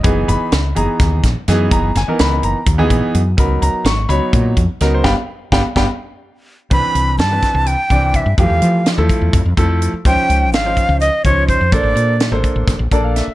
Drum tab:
HH |xxxxxxx|xxxxxxx|xxxxxxx|-------|
SD |--o-ooo|-oo----|--o---o|o-oo---|
BD |o---oo-|o---oo-|o---oo-|o-oo---|

HH |xxxxxxx|xxxxxxx|xxxxxxx|xxxxxxx|
SD |--oo---|--o----|--o----|--o-o-o|
BD |o--o-oo|o--ooo-|o--o-oo|o--ooo-|